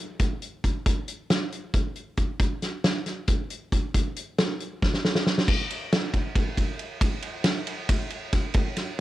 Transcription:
0.19 kick loud
0.19 closed hi-hat medium
0.42 closed hi-hat medium
0.64 kick medium
0.64 closed hi-hat medium
0.86 kick loud
0.86 closed hi-hat medium
1.08 closed hi-hat medium
1.30 snare loud
1.30 closed hi-hat medium
1.52 closed hi-hat medium
1.74 kick medium
1.74 closed hi-hat medium
1.96 closed hi-hat medium
2.17 kick medium
2.17 closed hi-hat medium
2.40 kick medium
2.40 closed hi-hat medium
2.62 snare soft
2.62 closed hi-hat medium
2.84 snare loud
2.84 closed hi-hat medium
3.06 snare soft
3.06 closed hi-hat medium
3.28 kick medium
3.28 closed hi-hat medium
3.50 closed hi-hat medium
3.72 kick medium
3.72 closed hi-hat medium
3.94 kick medium
3.94 closed hi-hat medium
4.16 closed hi-hat medium
4.38 snare loud
4.38 closed hi-hat medium
4.60 closed hi-hat medium
4.82 kick medium
4.82 snare medium
4.94 snare soft
5.05 snare medium
5.15 snare medium
5.27 snare medium
5.38 snare medium
5.48 kick loud
5.48 crash loud
5.71 ride medium
5.93 snare loud
5.93 ride loud
6.14 kick medium
6.14 ride medium
6.35 kick loud
6.35 ride medium
6.57 kick medium
6.57 ride medium
6.79 ride medium
7.01 kick loud
7.01 ride loud
7.22 ride medium
7.44 snare loud
7.44 ride loud
7.67 ride medium
7.89 kick loud
7.89 snare soft
7.89 ride loud
8.10 ride medium
8.33 kick medium
8.33 snare soft
8.33 ride medium
8.54 kick loud
8.54 ride loud
8.77 snare soft
8.77 ride medium

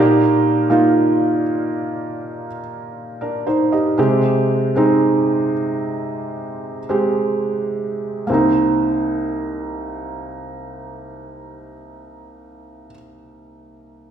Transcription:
0.00 1.41 A#2 medium
0.00 0.67 A#3 medium
0.00 0.20 D4 soft
0.00 0.68 D#4 medium
0.00 0.68 G4 medium
0.00 0.20 A#4 medium
0.70 2.60 A#3 medium
0.70 2.45 D#4 medium
0.70 2.45 F4 medium
3.21 3.46 D4 soft
3.21 3.45 A#4 soft
3.47 3.71 D#4 soft
3.47 3.71 C5 soft
3.72 3.98 G4 soft
3.72 4.21 D#5 soft
3.98 5.51 C3 medium
3.98 4.72 G#3 medium
3.98 4.72 C4 medium
3.98 4.72 G4 medium
4.75 6.79 G#3 soft
4.75 6.79 C4 medium
4.75 6.80 D#4 medium
6.89 8.22 G#3 medium
6.89 8.22 C4 soft
6.89 8.23 G4 medium
8.27 12.89 C2 soft
8.27 12.86 A#3 soft
8.27 12.89 C4 soft
8.33 12.93 D#4 medium

